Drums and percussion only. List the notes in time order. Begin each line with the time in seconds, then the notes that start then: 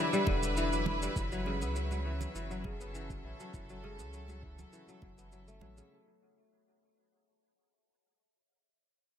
0.13 shaker
0.27 kick, muted conga
0.43 shaker
0.57 shaker
0.72 shaker
0.86 high conga, low conga
1.02 shaker
1.16 kick, shaker
1.32 shaker
1.46 high conga
1.61 muted conga, high conga, shaker
1.76 shaker
1.91 high conga, shaker
2.21 low conga, shaker
2.35 shaker
2.51 shaker
2.64 kick, muted conga
2.81 shaker
2.95 shaker
3.10 kick, shaker
3.40 shaker
3.54 kick, shaker
3.69 shaker
3.84 high conga
3.99 muted conga, shaker
4.13 shaker
4.28 high conga, shaker
4.43 kick
4.59 low conga, shaker
4.73 shaker
4.88 high conga, shaker
5.02 kick, muted conga
5.18 shaker
5.32 shaker
5.48 shaker
5.61 high conga, low conga
5.77 shaker